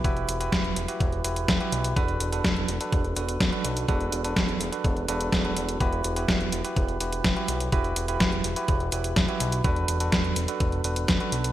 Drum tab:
HH |xxxxxxxxxxxxxxxx|xxxxxxxxxxxxxxxx|xxxxxxxxxxxxxxxx|xxxxxxxxxxxxxxxx|
SD |----o-------o---|----o-------o---|----o-------o---|----o-------o---|
BD |o---o---o---o---|o---o---o---o---|o---o---o---o---|o---o---o---o---|

HH |xxxxxxxxxxxxxxxx|xxxxxxxxxxxxxxxx|
SD |----o-------o---|----o-------o---|
BD |o---o---o---o---|o---o---o---o---|